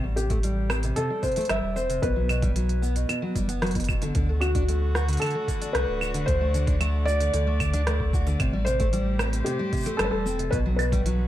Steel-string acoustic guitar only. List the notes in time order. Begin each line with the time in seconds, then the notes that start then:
0.04 G3
0.17 C3
0.31 A3
0.44 G3
0.70 C4
0.84 C3
0.97 C3
1.10 G3
1.24 C3
1.37 A3
1.50 G3
1.76 C4
1.90 C3
2.03 B2
2.16 F#3
2.29 B2
2.42 G3
2.56 F#3
2.82 B3
2.96 B2
3.09 B2
3.22 F#3
3.36 G3
3.49 B3
3.62 F#3
3.76 B2
3.89 B2
4.02 D3
4.16 D3
4.29 A3
4.42 D3
4.55 D4
4.69 A3
4.95 F#4
5.08 D3
5.22 D3
5.35 A3
5.48 D3
5.62 D4
5.75 A3
6.01 F#4
6.14 D3
6.28 D3
6.41 A3
6.54 D3
6.67 D4
6.81 A3
7.07 F#4
7.20 D3
7.34 D3
7.47 A3
7.60 D3
7.74 D4
7.87 A3
8.14 F#4
8.27 D3
8.40 C3
8.53 G3
8.67 C3
8.80 A3
8.93 G3
9.20 C4
9.33 C3
9.46 C3
9.59 G3
9.73 C3
9.86 A3
9.99 G3
10.26 C4
10.39 C3
10.52 B2
10.66 F#3
10.79 B2
10.92 G3
11.06 F#3